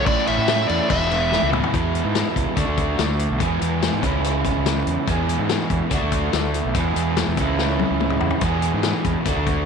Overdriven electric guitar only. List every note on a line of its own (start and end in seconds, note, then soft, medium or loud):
0.05 0.26 A2 loud
0.05 0.26 E3 loud
0.05 0.27 A3 loud
0.05 0.27 C#4 loud
0.05 0.28 E4 loud
0.27 0.46 A2 medium
0.27 0.47 E3 medium
0.27 0.48 A3 medium
0.27 0.48 C#4 medium
0.27 0.49 E4 medium
0.47 0.66 A2 medium
0.47 0.67 E3 medium
0.47 0.68 A3 medium
0.47 0.68 C#4 medium
0.47 0.69 E4 medium
0.68 0.88 A2 medium
0.68 0.88 E3 medium
0.68 0.89 A3 loud
0.68 0.89 C#4 loud
0.68 0.89 E4 loud
0.89 1.08 E2 medium
0.89 1.09 B2 loud
0.89 1.10 E3 loud
0.89 1.10 G#3 medium
0.89 1.11 B3 loud
0.89 1.12 E4 loud
1.09 1.29 E2 loud
1.09 1.30 B2 medium
1.09 1.30 E3 medium
1.09 1.31 G#3 loud
1.09 1.31 B3 loud
1.09 1.32 E4 loud
1.30 1.50 E2 medium
1.30 1.50 B2 medium
1.30 1.51 E3 medium
1.30 1.52 G#3 medium
1.30 1.52 B3 medium
1.30 1.53 E4 medium
1.51 1.70 E2 medium
1.51 1.72 B2 medium
1.51 1.72 E3 medium
1.51 1.73 G#3 medium
1.51 1.73 B3 medium
1.51 1.73 E4 medium
1.72 2.55 E2 medium
1.72 2.55 B2 medium
1.72 2.55 E3 medium
1.72 2.56 G#3 medium
1.72 2.57 B3 medium
1.72 2.57 E4 medium
2.56 3.39 D3 medium
2.56 3.39 A3 medium
2.56 3.40 D4 medium
2.56 3.41 F#4 medium
3.39 4.01 E2 medium
3.39 4.01 B2 medium
3.39 4.01 E3 medium
3.39 4.02 G#3 medium
3.39 4.03 B3 medium
3.39 4.03 G#4 loud
4.01 5.05 C#3 medium
4.01 5.06 E3 medium
4.01 5.06 G#3 medium
4.01 5.07 C#4 medium
4.05 5.07 E4 medium
5.06 5.89 E2 medium
5.06 5.90 B2 medium
5.06 5.90 E3 medium
5.06 5.91 G#3 medium
5.06 5.91 B3 medium
5.10 5.91 G#4 loud
5.90 6.73 D3 medium
5.90 6.74 A3 medium
5.90 6.74 D4 medium
5.94 6.75 F#4 medium
6.75 7.36 E2 medium
6.75 7.37 B2 medium
6.75 7.37 E3 medium
6.75 7.37 G#3 medium
6.75 7.38 B3 medium
6.75 7.38 G#4 medium
7.37 8.41 C#3 medium
7.37 8.41 E3 medium
7.37 8.42 G#3 loud
7.37 8.42 C#4 medium
7.37 8.43 E4 medium
8.42 9.24 E2 medium
8.42 9.25 B2 medium
8.42 9.25 E3 medium
8.42 9.26 G#3 medium
8.42 9.26 B3 medium
8.42 9.26 G#4 medium
9.25 9.65 D3 medium
9.25 9.65 A3 medium
9.25 9.65 D4 medium
9.25 9.65 F#4 medium